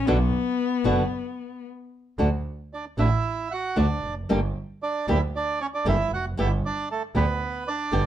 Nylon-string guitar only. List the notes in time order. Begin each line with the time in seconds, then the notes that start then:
0.07 B2 D3 B3 D4 F#4
0.84 B2 D3 B3 D4 F#4
2.18 D3 A3 D4 F#4
2.98 D3 A3 D4 F#4
3.76 D3 A3 D4 F#4
4.29 D3 G3 A#3 D4 G4
5.08 D3 G3 A#3 D4 G4
5.85 D3 G3 A#3 D4 G4
6.37 D3 G3 B3 G4
7.15 D3 G3 B3 G4
7.92 D3 G3 B3 G4